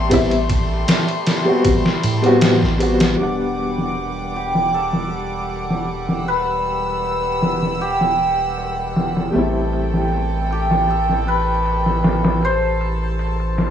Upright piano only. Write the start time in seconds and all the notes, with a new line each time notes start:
0.10 G3 B3 C4 E4
1.45 G3 B3 C4
1.49 F#4
2.22 G3 B3 C4 F#4
2.79 G3 B3 C4 F#4
3.15 G3 B3
3.20 D4 F#5
9.30 G3 A3
9.36 C4 E4